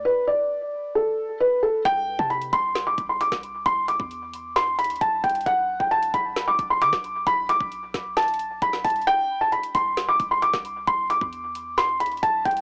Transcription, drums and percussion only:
1.85 kick, closed hi-hat
2.19 kick
2.30 closed hi-hat
2.42 closed hi-hat
2.53 kick, closed hi-hat
2.75 snare, closed hi-hat
2.98 kick, closed hi-hat
3.21 closed hi-hat
3.32 kick, snare
3.43 closed hi-hat
3.66 kick, closed hi-hat
3.88 closed hi-hat
4.00 kick
4.11 closed hi-hat
4.33 closed hi-hat
4.56 snare, closed hi-hat
4.79 closed hi-hat
4.84 closed hi-hat
4.90 closed hi-hat
4.95 closed hi-hat
5.01 kick, closed hi-hat
5.24 kick, closed hi-hat
5.29 closed hi-hat
5.35 closed hi-hat
5.41 closed hi-hat
5.46 kick, closed hi-hat
5.80 kick
5.91 closed hi-hat
6.03 closed hi-hat
6.14 kick, closed hi-hat
6.36 snare, closed hi-hat
6.59 kick, closed hi-hat
6.82 closed hi-hat
6.93 kick, snare
7.04 closed hi-hat
7.27 kick, closed hi-hat
7.49 closed hi-hat
7.61 kick
7.72 closed hi-hat
7.94 kick, snare, closed hi-hat
8.17 snare, closed hi-hat
8.23 closed hi-hat
8.28 closed hi-hat
8.34 closed hi-hat
8.39 closed hi-hat
8.62 kick, closed hi-hat
8.73 snare
8.85 kick, closed hi-hat, open hi-hat
8.90 closed hi-hat
8.96 closed hi-hat
9.02 closed hi-hat
9.07 closed hi-hat
9.52 closed hi-hat
9.64 closed hi-hat
9.75 kick, closed hi-hat
9.97 snare, closed hi-hat
10.20 kick, closed hi-hat
10.42 closed hi-hat
10.54 kick, snare
10.65 closed hi-hat
10.88 kick, closed hi-hat
11.10 closed hi-hat
11.21 kick
11.33 closed hi-hat
11.55 closed hi-hat
11.78 snare, closed hi-hat
12.00 closed hi-hat
12.06 closed hi-hat
12.12 closed hi-hat
12.17 closed hi-hat
12.23 kick, closed hi-hat
12.45 kick, closed hi-hat
12.51 closed hi-hat
12.57 closed hi-hat

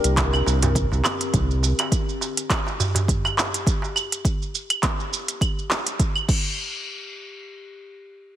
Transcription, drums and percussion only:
0.04 closed hi-hat, shaker
0.17 kick, clap, closed hi-hat, shaker
0.33 darbuka ka, claves, shaker
0.46 darbuka tek, shaker
0.63 closed hi-hat, darbuka dum, shaker
0.75 kick, closed hi-hat, shaker
0.92 darbuka ka, shaker
1.05 clap, darbuka ka, claves, shaker
1.21 closed hi-hat, shaker
1.34 kick, closed hi-hat, shaker
1.51 shaker
1.63 darbuka ka, shaker
1.79 closed hi-hat, darbuka tek, claves, shaker
1.92 kick, closed hi-hat, shaker
2.09 shaker
2.21 darbuka tek, shaker
2.37 closed hi-hat, shaker
2.50 kick, clap, closed hi-hat, claves, shaker
2.67 darbuka ka, shaker
2.80 darbuka dum, shaker
2.95 closed hi-hat, darbuka dum, shaker
3.08 kick, closed hi-hat, shaker
3.25 darbuka tek, claves, shaker
3.37 clap, darbuka ka, shaker
3.54 closed hi-hat, shaker
3.67 kick, closed hi-hat, shaker
3.82 darbuka ka, shaker
3.96 darbuka tek, claves, shaker
4.12 closed hi-hat, shaker
4.25 kick, closed hi-hat, shaker
4.42 shaker
4.55 shaker
4.70 closed hi-hat, claves, shaker
4.83 kick, clap, closed hi-hat, shaker
5.00 shaker
5.13 shaker
5.28 closed hi-hat, shaker
5.41 kick, closed hi-hat, claves, shaker
5.59 shaker
5.71 clap, shaker
5.87 closed hi-hat, shaker
6.00 kick, closed hi-hat, shaker
6.16 claves, shaker
6.29 kick, crash

